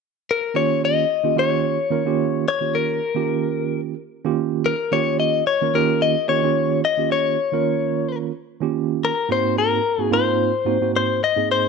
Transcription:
0.31 0.57 A#4 medium
0.54 1.04 D#3 medium
0.54 1.04 A#3 medium
0.54 1.04 C#4 medium
0.54 1.04 F4 medium
0.54 1.05 G4 medium
0.54 0.81 C#5 medium
0.85 1.39 D#5 medium
1.23 1.33 D#3 medium
1.23 1.33 A#3 medium
1.23 1.33 C#4 medium
1.23 1.33 F4 medium
1.23 1.34 G4 medium
1.36 1.76 D#3 medium
1.36 1.76 A#3 medium
1.36 1.77 C#4 medium
1.36 1.77 F4 medium
1.36 1.77 G4 medium
1.36 2.47 C#5 medium
1.90 2.02 D#3 medium
1.90 2.02 A#3 medium
1.90 2.02 C#4 medium
1.90 2.02 F4 medium
1.90 2.02 A#4 medium
2.05 2.44 D#3 medium
2.05 2.44 A#3 medium
2.05 2.44 C#4 medium
2.05 2.44 F4 medium
2.05 2.45 G4 medium
2.48 2.76 C#5 medium
2.60 2.99 D#3 medium
2.60 2.99 A#3 medium
2.60 2.99 C#4 soft
2.60 2.99 F4 medium
2.60 3.00 G4 medium
2.75 3.80 A#4 medium
3.15 3.93 D#3 medium
3.15 3.93 A#3 medium
3.15 3.93 C#4 medium
3.15 3.93 F4 medium
3.15 3.93 G4 medium
4.24 4.73 D#3 medium
4.24 4.73 A#3 medium
4.24 4.73 C#4 medium
4.24 4.73 F4 medium
4.24 4.74 G4 medium
4.66 4.94 A#4 medium
4.91 5.41 D#3 medium
4.91 5.41 A#3 medium
4.91 5.41 C#4 medium
4.91 5.42 F4 medium
4.91 5.42 G4 medium
4.91 5.19 C#5 loud
5.20 5.47 D#5 medium
5.47 5.75 C#5 medium
5.61 5.71 D#3 medium
5.61 5.71 A#3 medium
5.61 5.71 C#4 medium
5.61 5.71 F4 medium
5.61 5.71 A#4 medium
5.74 6.14 D#3 medium
5.74 6.14 A#3 medium
5.74 6.14 C#4 medium
5.74 6.15 F4 medium
5.74 6.15 G4 medium
5.74 6.00 A#4 medium
6.02 6.29 D#5 medium
6.28 6.39 D#3 medium
6.28 6.40 A#3 medium
6.28 6.40 C#4 medium
6.28 6.40 F4 medium
6.28 6.40 G4 medium
6.28 6.80 C#5 loud
6.42 6.81 D#3 medium
6.42 6.81 A#3 medium
6.42 6.82 C#4 medium
6.42 6.82 F4 medium
6.42 6.82 G4 medium
6.85 7.12 D#5 medium
6.97 7.36 D#3 medium
6.97 7.36 A#3 medium
6.97 7.36 C#4 medium
6.97 7.36 F4 medium
6.97 7.37 G4 medium
7.12 8.17 C#5 medium
7.52 8.30 D#3 medium
7.52 8.30 A#3 medium
7.52 8.30 C#4 medium
7.52 8.31 F4 medium
7.52 8.31 A#4 medium
8.61 9.10 D#3 medium
8.61 9.10 A#3 medium
8.61 9.10 C#4 medium
8.61 9.11 F4 medium
8.61 9.11 G4 medium
9.05 9.32 A#4 medium
9.29 9.78 G#2 medium
9.29 9.79 A#3 medium
9.29 9.79 C4 medium
9.29 9.79 D#4 medium
9.29 9.79 F#4 medium
9.29 9.57 C5 medium
9.58 10.02 A#4 medium
9.98 10.08 G#2 medium
9.98 10.08 A#3 medium
9.98 10.08 C4 medium
9.98 10.08 D#4 medium
9.98 10.09 F#4 medium
10.02 10.13 G#4 medium
10.11 10.51 G#2 medium
10.11 10.51 A#3 medium
10.11 10.52 C4 medium
10.11 10.52 D#4 medium
10.11 10.52 F4 medium
10.11 10.91 C5 medium
10.65 10.77 G#2 medium
10.65 10.77 A#3 medium
10.65 10.77 C4 medium
10.65 10.77 D#4 medium
10.65 10.77 F#4 medium
10.81 11.19 G#2 medium
10.81 11.19 A#3 medium
10.81 11.19 C4 medium
10.81 11.20 D#4 medium
10.81 11.20 F#4 medium
10.96 11.21 C5 medium
11.24 11.48 D#5 medium
11.36 11.69 G#2 medium
11.36 11.69 A#3 medium
11.36 11.69 C4 medium
11.36 11.69 D#4 medium
11.36 11.69 G#4 medium
11.51 11.69 C5 loud

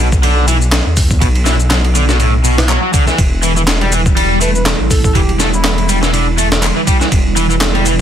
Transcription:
0.00 0.81 B1 loud
0.12 kick loud
0.12 shaker soft
0.23 0.47 D3 loud
0.23 ride medium
0.23 shaker soft
0.48 0.56 E3 loud
0.48 ride medium
0.48 shaker medium
0.62 shaker soft
0.72 snare loud
0.72 clap loud
0.72 ride medium
0.72 shaker soft
0.86 1.17 E2 medium
0.97 kick loud
0.97 open hi-hat medium
0.97 shaker medium
1.11 kick loud
1.11 shaker soft
1.21 2.77 B1 loud
1.21 1.27 B2 medium
1.21 kick loud
1.21 ride medium
1.21 shaker soft
1.35 ride soft
1.46 1.55 E3 loud
1.46 snare soft
1.46 ride medium
1.46 shaker medium
1.60 shaker soft
1.71 1.76 F#3 medium
1.71 snare loud
1.71 clap medium
1.71 ride medium
1.71 shaker soft
1.85 ride soft
1.95 2.04 D3 medium
1.95 ride medium
1.95 shaker medium
2.09 2.19 B2 loud
2.09 snare medium
2.09 shaker soft
2.20 2.33 A2 medium
2.20 ride medium
2.20 shaker soft
2.44 2.57 B2 medium
2.44 ride medium
2.44 shaker medium
2.58 snare loud
2.58 shaker soft
2.69 2.82 F#3 medium
2.69 clap loud
2.69 shaker soft
2.83 2.93 F#3 medium
2.94 3.06 D3 medium
2.94 kick loud
2.94 ride medium
2.94 shaker medium
3.07 3.18 E3 medium
3.07 snare soft
3.07 shaker soft
3.18 4.74 E1 loud
3.18 8.01 D3 medium
3.18 8.01 G3 medium
3.18 8.01 E4 medium
3.18 kick loud
3.18 ride loud
3.18 shaker soft
3.43 3.51 E3 loud
3.43 ride medium
3.43 shaker medium
3.57 3.61 E3 medium
3.57 shaker soft
3.67 snare loud
3.67 clap loud
3.67 ride medium
3.67 shaker soft
3.81 3.91 G3 medium
3.81 ride soft
3.92 4.01 E3 medium
3.92 ride medium
3.92 shaker medium
4.06 kick loud
4.06 shaker soft
4.17 4.40 G3 loud
4.17 ride medium
4.17 shaker soft
4.41 4.50 A3 loud
4.41 4.50 B4 medium
4.41 ride medium
4.41 shaker medium
4.55 4.62 B4 medium
4.55 shaker soft
4.66 snare loud
4.66 clap loud
4.66 ride medium
4.66 shaker soft
4.80 5.11 A1 medium
4.90 4.99 A4 medium
4.90 kick loud
4.90 open hi-hat medium
4.90 shaker medium
5.04 5.11 A4 medium
5.04 kick loud
5.04 shaker soft
5.15 6.71 E1 loud
5.15 5.20 E3 medium
5.15 5.31 G4 medium
5.15 kick loud
5.15 ride loud
5.15 shaker soft
5.29 ride soft
5.40 5.48 A3 loud
5.40 snare soft
5.40 ride medium
5.40 shaker medium
5.54 5.89 E4 medium
5.54 shaker soft
5.64 5.70 B3 medium
5.64 snare loud
5.64 clap loud
5.64 ride medium
5.64 shaker soft
5.78 ride soft
5.89 5.97 G3 medium
5.89 ride medium
5.89 shaker medium
6.02 6.12 E3 loud
6.02 snare medium
6.02 shaker soft
6.13 6.26 D3 medium
6.13 ride medium
6.13 shaker soft
6.38 6.46 A3 loud
6.38 ride medium
6.38 shaker medium
6.52 snare loud
6.52 shaker soft
6.63 clap loud
6.63 ride medium
6.63 shaker soft
6.76 6.80 E3 medium
6.87 6.96 G3 medium
6.87 kick loud
6.87 ride medium
6.87 shaker medium
7.01 7.05 E3 medium
7.01 snare soft
7.01 shaker soft
7.12 8.01 E1 loud
7.12 kick loud
7.12 ride loud
7.12 shaker soft
7.36 7.45 E3 loud
7.36 ride medium
7.36 shaker medium
7.50 7.54 E3 medium
7.50 shaker soft
7.61 snare loud
7.61 clap loud
7.61 ride medium
7.61 shaker soft
7.75 7.85 G3 medium
7.75 ride soft
7.85 7.94 E3 medium
7.85 ride medium
7.85 shaker medium

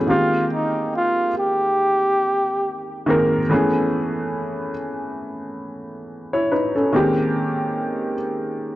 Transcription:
0.00 0.10 A3 medium
0.00 0.10 C#4 medium
0.07 1.27 D#3 medium
0.07 1.28 G#3 medium
0.07 1.28 A#3 medium
0.07 1.28 C4 medium
0.07 0.48 F4 medium
0.07 1.29 G4 medium
0.54 0.91 D#4 medium
0.96 1.40 F4 medium
1.38 2.86 G4 medium
3.06 3.39 D#3 medium
3.06 3.39 G#3 medium
3.06 3.40 A#3 medium
3.06 3.40 C4 medium
3.06 3.41 A#4 medium
3.49 4.70 E3 medium
3.49 4.70 A3 medium
3.49 4.70 B3 medium
3.49 4.71 C#4 medium
3.49 4.71 G#4 medium
6.33 6.51 E4 medium
6.33 6.50 C#5 medium
6.52 6.75 D#4 medium
6.52 6.74 B4 medium
6.76 7.16 C#4 medium
6.76 7.16 A4 medium
6.93 8.13 D#3 medium
6.93 8.13 G#3 medium
6.93 8.14 A#3 medium
6.93 8.14 C4 medium
6.93 8.15 G4 medium

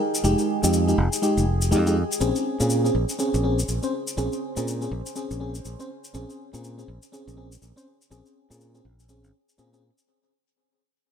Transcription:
0.00 3.88 D#4 medium
0.00 3.93 G#4 medium
0.00 2.21 G5 medium
0.15 shaker medium
0.24 0.34 F1 medium
0.24 0.60 G#3 medium
0.24 0.60 D#4 medium
0.24 0.60 G4 loud
0.24 shaker medium
0.38 shaker soft
0.63 0.92 F2 medium
0.63 0.84 G#3 medium
0.63 0.85 D#4 medium
0.63 0.85 G4 medium
0.63 shaker medium
0.73 shaker medium
0.88 0.97 G#3 medium
0.88 0.98 D#4 medium
0.88 0.98 G4 medium
0.88 shaker soft
0.98 1.07 F1 loud
1.13 shaker medium
1.22 1.45 G#3 medium
1.22 1.45 D#4 medium
1.22 1.45 G4 medium
1.22 shaker medium
1.37 1.73 F1 medium
1.37 shaker soft
1.61 shaker medium
1.71 2.02 F2 medium
1.71 1.83 G#3 medium
1.71 1.83 D#4 medium
1.71 1.83 G4 loud
1.71 shaker medium
1.86 1.96 G#3 medium
1.86 1.96 D#4 medium
1.86 1.96 G4 loud
1.86 shaker soft
2.12 shaker medium
2.20 2.30 A#1 loud
2.20 2.56 C4 medium
2.20 2.57 C#4 medium
2.20 10.08 C#4 medium
2.20 2.57 G#4 medium
2.20 shaker medium
2.36 10.08 C5 medium
2.36 shaker soft
2.60 2.89 A#2 medium
2.60 2.81 C4 medium
2.60 2.81 C#4 medium
2.60 2.82 G#4 medium
2.60 shaker medium
2.70 shaker medium
2.84 2.94 C4 medium
2.84 2.95 C#4 medium
2.84 2.95 G#4 medium
2.84 shaker soft
2.95 3.04 A#1 medium
3.09 shaker medium
3.19 3.41 C4 medium
3.19 3.42 C#4 medium
3.19 3.42 G#4 medium
3.19 shaker medium
3.34 3.63 A#1 medium
3.34 shaker soft
3.43 3.58 C4 medium
3.43 3.58 C#4 medium
3.43 3.59 G#4 medium
3.59 shaker medium
3.68 3.78 A#1 medium
3.68 shaker medium
3.83 3.93 C4 medium
3.83 3.93 C#4 medium
3.83 3.93 C5 medium
3.83 shaker soft
3.99 7.57 G#5 medium
4.07 shaker medium
4.17 4.27 A#1 medium
4.17 4.53 C4 medium
4.17 4.53 C#4 medium
4.17 4.54 G#4 medium
4.17 shaker medium
4.32 shaker soft
4.56 4.86 A#2 medium
4.56 4.78 C4 medium
4.56 4.78 C#4 medium
4.56 4.78 G#4 medium
4.56 shaker medium
4.68 shaker medium
4.81 4.91 C4 medium
4.81 4.91 C#4 medium
4.81 4.91 G#4 medium
4.81 shaker soft
4.91 5.01 A#1 medium
5.06 shaker medium
5.15 5.38 C4 medium
5.15 5.38 C#4 medium
5.15 5.38 G#4 medium
5.15 shaker medium
5.31 5.59 A#1 medium
5.31 shaker soft
5.40 5.55 C4 medium
5.40 5.55 C#4 medium
5.40 5.55 G#4 medium
5.55 shaker medium
5.65 5.75 A#1 medium
5.65 shaker medium
5.79 5.89 C4 medium
5.79 5.90 C#4 medium
5.79 5.90 C5 medium
5.79 shaker soft
6.04 shaker medium
6.14 6.24 A#1 medium
6.14 6.50 C4 medium
6.14 6.50 C#4 medium
6.14 6.50 G#4 medium
6.14 shaker soft
6.30 shaker soft
6.53 6.82 A#2 medium
6.53 6.74 C4 medium
6.53 6.75 C#4 medium
6.53 6.75 G#4 medium
6.53 shaker medium
6.64 shaker medium
6.78 6.88 C4 medium
6.78 6.88 C#4 medium
6.78 6.88 G#4 medium
6.78 shaker soft
6.88 6.97 A#1 loud
7.02 shaker medium
7.12 7.35 C4 medium
7.12 7.35 C#4 medium
7.12 7.35 G#4 medium
7.12 shaker medium
7.27 7.56 A#1 medium
7.27 shaker soft
7.37 7.52 C4 medium
7.37 7.52 C#4 medium
7.37 7.52 G#4 medium
7.43 10.08 G5 medium
7.52 shaker medium
7.62 7.71 A#1 medium
7.62 shaker medium
7.76 7.86 C4 medium
7.76 7.86 C#4 medium
7.76 7.87 C5 medium
7.76 shaker soft
8.02 shaker medium
8.11 8.20 A#1 medium
8.11 8.47 C4 medium
8.11 8.47 C#4 medium
8.11 8.47 G#4 loud
8.11 shaker medium
8.26 shaker soft
8.50 8.79 A#2 medium
8.50 8.71 C4 medium
8.50 8.71 C#4 medium
8.50 8.72 G#4 medium
8.50 shaker medium
8.61 shaker medium
8.74 8.84 C4 medium
8.74 8.85 C#4 medium
8.74 8.85 G#4 medium
8.74 shaker soft
8.85 9.24 A#1 medium
8.99 shaker medium
9.09 9.31 C4 medium
9.09 9.32 C#4 medium
9.09 9.32 G#4 medium
9.09 shaker medium
9.24 9.30 G#1 medium
9.24 shaker soft
9.49 shaker medium
9.58 9.89 A#2 medium
9.58 9.70 C4 medium
9.58 9.70 C#4 medium
9.58 9.70 G#4 loud
9.58 shaker medium
9.73 9.83 C4 medium
9.73 9.83 C#4 medium
9.73 9.83 G#4 loud
9.73 shaker soft
9.98 shaker medium

